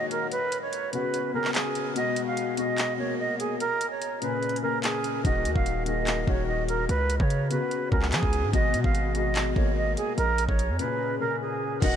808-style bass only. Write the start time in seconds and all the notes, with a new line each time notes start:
5.25 D#1
5.45 D#2
5.56 D#1
6.27 D#1
6.89 C#2
7.20 C#3
7.92 C#2
8.12 F3
8.23 C#2
8.43 G#2
8.53 G#1
8.74 B2
8.84 G#1
9.56 G#1
10.18 A#1
10.49 A#1
10.69 F2
11.82 D#1